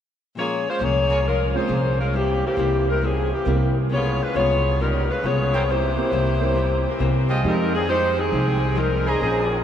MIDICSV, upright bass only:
0, 0, Header, 1, 2, 480
1, 0, Start_track
1, 0, Key_signature, -4, "minor"
1, 0, Tempo, 442804
1, 385, Time_signature, 4, 2, 24, 8
1, 10449, End_track
2, 0, Start_track
2, 0, Title_t, "Upright bass"
2, 0, Program_c, 0, 32
2, 875, Note_on_c, 0, 36, 69
2, 1658, Note_off_c, 0, 36, 0
2, 1828, Note_on_c, 0, 36, 72
2, 2615, Note_off_c, 0, 36, 0
2, 2786, Note_on_c, 0, 36, 66
2, 3574, Note_off_c, 0, 36, 0
2, 3751, Note_on_c, 0, 36, 72
2, 4537, Note_off_c, 0, 36, 0
2, 4717, Note_on_c, 0, 36, 73
2, 5500, Note_off_c, 0, 36, 0
2, 5673, Note_on_c, 0, 36, 75
2, 6458, Note_off_c, 0, 36, 0
2, 6632, Note_on_c, 0, 36, 69
2, 7417, Note_off_c, 0, 36, 0
2, 7589, Note_on_c, 0, 36, 76
2, 8036, Note_off_c, 0, 36, 0
2, 8065, Note_on_c, 0, 41, 77
2, 8983, Note_off_c, 0, 41, 0
2, 9022, Note_on_c, 0, 36, 76
2, 9940, Note_off_c, 0, 36, 0
2, 9984, Note_on_c, 0, 34, 81
2, 10431, Note_off_c, 0, 34, 0
2, 10449, End_track
0, 0, End_of_file